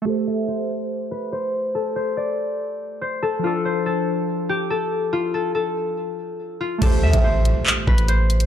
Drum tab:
CC |----------------|----------------|----------------|----------------|
HH |----------------|----------------|----------------|----------------|
CP |----------------|----------------|----------------|----------------|
BD |----------------|----------------|----------------|----------------|

CC |x---------------|
HH |x--x--x----xx-xx|
CP |--------x-------|
BD |o--o------o-----|